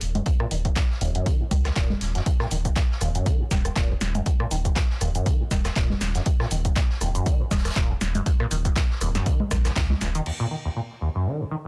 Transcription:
0.00 analog synth bass D#1, closed hi-hat, open hi-hat
0.15 acid bass F#2, closed hi-hat, low conga
0.26 acid bass D#2, kick, closed hi-hat
0.40 acid bass A#2, cross-stick
0.51 analog synth bass D#1, acid bass D#3, closed hi-hat, open hi-hat
0.65 acid bass D#2, kick, closed hi-hat
0.76 acid bass A#2, kick, snare, clap, closed hi-hat
0.91 snare
1.01 analog synth bass D#1, acid bass D#2, closed hi-hat, open hi-hat
1.15 acid bass F#2, closed hi-hat
1.26 acid bass D#3, kick, closed hi-hat
1.40 acid bass D#2
1.51 analog synth bass C#2, acid bass D#3, kick, closed hi-hat, open hi-hat, low conga
1.65 acid bass D#2, cross-stick, snare, clap, closed hi-hat
1.76 analog synth bass D#1, acid bass A#2, kick, snare, clap, closed hi-hat
1.89 acid bass D#2, snare, low conga
2.01 analog synth bass D#1, snare, closed hi-hat, open hi-hat
2.15 acid bass F#2, snare, closed hi-hat
2.26 acid bass D#2, kick, closed hi-hat, cabasa
2.39 acid bass A#2, cross-stick, snare
2.51 analog synth bass D#1, acid bass D#3, closed hi-hat, open hi-hat, cabasa
2.65 acid bass D#2, kick, closed hi-hat, cabasa
2.76 acid bass A#2, kick, snare, clap, closed hi-hat, cabasa
2.91 snare
3.00 analog synth bass D#1, acid bass D#2, cross-stick, closed hi-hat, open hi-hat, cabasa
3.15 acid bass F#2, closed hi-hat, cabasa
3.26 acid bass D#3, kick, closed hi-hat, cabasa
3.40 acid bass D#2
3.51 analog synth bass D#1, acid bass D#3, kick, snare, closed hi-hat, open hi-hat, low conga, cabasa
3.65 acid bass D#2, cross-stick, closed hi-hat, cabasa
3.76 analog synth bass D#1, acid bass A#2, kick, snare, clap, closed hi-hat, cabasa
3.90 acid bass D#2
4.01 analog synth bass D#1, snare, closed hi-hat, open hi-hat, cabasa
4.15 acid bass F#2, closed hi-hat, low conga, cabasa
4.26 acid bass D#2, kick, closed hi-hat, cabasa
4.40 acid bass A#2, cross-stick
4.51 analog synth bass D#1, acid bass D#3, closed hi-hat, open hi-hat, cabasa
4.65 acid bass D#2, kick, closed hi-hat, cabasa
4.75 acid bass A#2, kick, snare, clap, closed hi-hat, cabasa
4.90 snare
5.01 analog synth bass D#1, acid bass D#2, cross-stick, closed hi-hat, open hi-hat, cabasa
5.15 acid bass F#2, closed hi-hat, cabasa
5.26 acid bass D#3, kick, closed hi-hat, cabasa
5.40 acid bass D#2
5.51 analog synth bass D#1, acid bass D#3, kick, snare, closed hi-hat, open hi-hat, low conga, cabasa
5.65 acid bass D#2, cross-stick, snare, clap, closed hi-hat, cabasa
5.76 analog synth bass D#1, acid bass A#2, kick, snare, clap, closed hi-hat, cabasa
5.90 acid bass D#2, snare, low conga
6.01 analog synth bass D#1, snare, closed hi-hat, open hi-hat, cabasa
6.15 acid bass F#2, snare, closed hi-hat, cabasa
6.25 acid bass D#2, kick, closed hi-hat, cabasa
6.40 acid bass A#2, cross-stick, snare
6.51 analog synth bass D#1, acid bass D#3, closed hi-hat, open hi-hat, cabasa
6.65 acid bass D#2, kick, closed hi-hat, cabasa
6.76 acid bass A#2, kick, snare, clap, closed hi-hat, cabasa
6.90 snare
7.01 analog synth bass D#1, acid bass D#2, cross-stick, closed hi-hat, open hi-hat, cabasa
7.15 acid bass F#2, closed hi-hat, cabasa
7.26 acid bass D#3, kick, closed hi-hat, cabasa
7.40 acid bass D#2
7.51 analog synth bass D#1, acid bass D#3, kick, snare, closed hi-hat, open hi-hat, low conga, cabasa
7.58 snare, closed hi-hat
7.65 acid bass D#2, cross-stick, snare, closed hi-hat, cabasa
7.70 snare, closed hi-hat
7.76 analog synth bass D#1, acid bass A#2, kick, snare, clap, closed hi-hat, cabasa
7.90 acid bass D#2
8.01 analog synth bass D#1, snare, closed hi-hat, open hi-hat, cabasa
8.15 acid bass F#2, closed hi-hat, low conga, cabasa
8.26 acid bass D#2, kick, closed hi-hat, cabasa
8.40 acid bass A#2, cross-stick
8.51 analog synth bass D#1, acid bass D#3, closed hi-hat, open hi-hat, cabasa
8.65 acid bass D#2, kick, closed hi-hat, cabasa
8.75 acid bass A#2, kick, snare, clap, closed hi-hat, cabasa
8.90 snare
9.01 analog synth bass D#1, acid bass D#2, cross-stick, closed hi-hat, open hi-hat, cabasa
9.15 acid bass F#2, snare, closed hi-hat, cabasa
9.26 acid bass D#3, kick, closed hi-hat, cabasa
9.40 acid bass D#2, low conga
9.51 analog synth bass A#1, acid bass C#2, kick, cross-stick, snare, closed hi-hat, open hi-hat, low conga, cabasa
9.65 acid bass D#2, cross-stick, snare, clap, closed hi-hat, cabasa
9.76 analog synth bass C#2, acid bass D#3, kick, snare, clap, closed hi-hat, cabasa
9.90 acid bass C#2, snare, low conga
10.01 analog synth bass D#1, acid bass C#2, snare, closed hi-hat, open hi-hat, cabasa
10.15 acid bass D#3, closed hi-hat, cabasa
10.26 acid bass D#2, crash
10.40 acid bass A#2
10.51 acid bass D#3
10.65 acid bass D#2
10.76 acid bass A#2
11.01 acid bass D#2
11.15 acid bass F#2
11.26 acid bass D#3
11.40 acid bass D#2
11.51 acid bass D#3

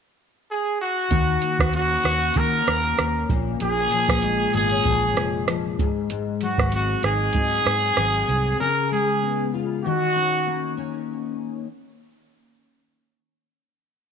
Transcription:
0.51 trumpet G#4
0.81 trumpet F#4
1.11 fingered electric bass D#2, steel-string acoustic guitar D#3, kick, closed hi-hat
1.42 steel-string acoustic guitar A#3, closed hi-hat
1.59 fingered electric bass D#2, kick, cross-stick
1.73 steel-string acoustic guitar C#4, trumpet F#4, closed hi-hat
2.04 fingered electric bass D#2, steel-string acoustic guitar F#4, cross-stick, closed hi-hat
2.34 fingered electric bass D#3, steel-string acoustic guitar A#3, trumpet A#4, kick, closed hi-hat
2.67 fingered electric bass D#2, steel-string acoustic guitar C#4, cross-stick, closed hi-hat
2.97 fingered electric bass D#2, steel-string acoustic guitar A#3, cross-stick, closed hi-hat
3.29 fingered electric bass A#1, steel-string acoustic guitar A#2, kick, closed hi-hat
3.60 fingered electric bass A#1, steel-string acoustic guitar A#2, trumpet G#4, closed hi-hat
3.91 steel-string acoustic guitar F3, closed hi-hat
4.09 fingered electric bass A#1, kick, cross-stick
4.22 steel-string acoustic guitar G#3, closed hi-hat
4.54 fingered electric bass G#1, steel-string acoustic guitar B3, trumpet G#4, closed hi-hat
4.71 steel-string acoustic guitar C#4
4.83 fingered electric bass A#1, steel-string acoustic guitar F3, kick, closed hi-hat
5.17 fingered electric bass F1, steel-string acoustic guitar G#3, cross-stick, closed hi-hat
5.48 steel-string acoustic guitar F3, cross-stick, closed hi-hat
5.79 fingered electric bass G#1, steel-string acoustic guitar G#2, kick, closed hi-hat
6.10 steel-string acoustic guitar G#2, closed hi-hat
6.41 steel-string acoustic guitar F#3, trumpet F#4, closed hi-hat
6.58 fingered electric bass G#1, kick, cross-stick
6.72 steel-string acoustic guitar C4, trumpet F#4, closed hi-hat
7.03 fingered electric bass G#1, steel-string acoustic guitar D#4, trumpet G#4, cross-stick, closed hi-hat
7.33 fingered electric bass G#2, steel-string acoustic guitar F#3, kick, closed hi-hat
7.66 fingered electric bass G#2, steel-string acoustic guitar C4, cross-stick, closed hi-hat
7.97 fingered electric bass G#1, steel-string acoustic guitar F#3, cross-stick, closed hi-hat
8.28 fingered electric bass C2, steel-string acoustic guitar C4, closed hi-hat
8.60 steel-string acoustic guitar C#3, trumpet A#4
8.91 steel-string acoustic guitar G#3, trumpet G#4
9.22 steel-string acoustic guitar B3
9.54 steel-string acoustic guitar F4
9.84 steel-string acoustic guitar D#3, trumpet F#4
10.16 steel-string acoustic guitar C#4
10.47 steel-string acoustic guitar A#3
10.77 steel-string acoustic guitar C#4

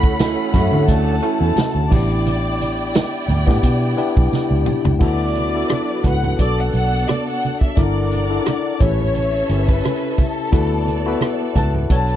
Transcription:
Already playing: fingered electric bass D2, horn section F#3 A3 C#4 F#4, tine electric piano A3 C#4 E4 F#4, string section C#4 A4 F#5, violin section B5
0.03 kick
0.19 horn section E3 A3 C#4 E4, snare, closed hi-hat, tambourine, high conga
0.53 fingered electric bass F#2, tine electric piano A3 C#4 E4 F#4, kick, closed hi-hat, tambourine, low conga
0.72 fingered electric bass D3, tine electric piano A3 C#4 E4 A4, low conga
0.88 fingered electric bass D2, horn section D3 F#3 A3 D4, violin section A5, kick, closed hi-hat, tambourine, muted conga
1.22 horn section E3 A3 C#4 E4, closed hi-hat
1.41 fingered electric bass E2, violin section A5
1.56 muted fingered electric bass stroke, snare, closed hi-hat, tambourine, high conga
1.75 fingered electric bass D2
1.90 fingered electric bass A1, tine electric piano B3 C#4 E4 G4, string section E4 D5 G5, violin section D5, kick, tambourine, crash, high conga
1.97 tine electric piano D4
2.27 closed hi-hat, tambourine, muted conga
2.61 closed hi-hat, tambourine, muted conga
2.94 snare, closed hi-hat, tambourine, high conga
3.28 fingered electric bass D2, closed hi-hat, tambourine, low conga
3.46 fingered electric bass A2, tine electric piano B3 D4 E4 G4, kick, snare, low conga
3.63 fingered electric bass B2, kick, closed hi-hat, tambourine, muted conga
3.97 tine electric piano B3 D4 E4 G4, closed hi-hat, tambourine, muted conga
4.17 fingered electric bass B1, kick
4.32 muted fingered electric bass stroke, snare, tambourine, high conga
4.51 fingered electric bass C#2
4.66 mid tom, tambourine, high conga
4.85 fingered electric bass C#2, floor tom, high conga
4.99 fingered electric bass D2, string section F#3 D4 B4, tine electric piano B3 E4 F#4 A4, kick, crash, muted conga
5.05 violin section D5
5.35 closed hi-hat, muted conga
5.54 tine electric piano B3 E4 F#4 A4
5.69 cross-stick, closed hi-hat, high conga
6.04 fingered electric bass C#2, tine electric piano B3 E4 F#4 B4, violin section F#5, kick, closed hi-hat, low conga
6.23 closed hi-hat, low conga
6.38 fingered electric bass B1, tine electric piano B3 D4 F#4 A4, string section B3 A4 D5, violin section D5, kick, closed hi-hat, muted conga
6.60 violin section F#5
6.73 fingered electric bass B1, violin section F#5, closed hi-hat, muted conga
7.07 violin section D5, cross-stick, closed hi-hat, high conga
7.29 violin section F#5
7.42 closed hi-hat, high conga
7.61 violin section E5, kick
7.76 fingered electric bass G1, tine electric piano D4 E4 A4 A#4, string section D4 A#4 F#5, violin section D5, kick, closed hi-hat, muted conga
8.12 closed hi-hat, muted conga
8.30 tine electric piano D4 E4 A4 D5
8.46 cross-stick, closed hi-hat, high conga
8.80 fingered electric bass A1, tine electric piano C#4 E4 G4 A4, string section C#4 A4 E5, violin section C#5, kick, closed hi-hat, low conga
8.89 tine electric piano B4
9.01 low conga
9.15 closed hi-hat, muted conga
9.49 fingered electric bass G1, tine electric piano C#4 E4 G4 A#4, closed hi-hat, muted conga
9.58 tine electric piano B4
9.69 violin section B4, kick
9.84 cross-stick, closed hi-hat, high conga
10.18 violin section A4, kick, closed hi-hat, high conga
10.52 fingered electric bass D2, string section B3 A4 D5, tine electric piano E4 F#4 A4 B4, kick, closed hi-hat, muted conga
10.87 closed hi-hat, muted conga
11.06 tine electric piano E4 F#4 A4 B4
11.21 cross-stick, closed hi-hat, high conga
11.56 fingered electric bass C#2, tine electric piano E4 F#4 A4 B4, violin section A5, kick, closed hi-hat, low conga
11.75 low conga
11.90 fingered electric bass B1, tine electric piano D4 F#4 A4 C#5, string section D4 B4 F#5, violin section A5, kick, closed hi-hat, muted conga
12.08 closed hi-hat

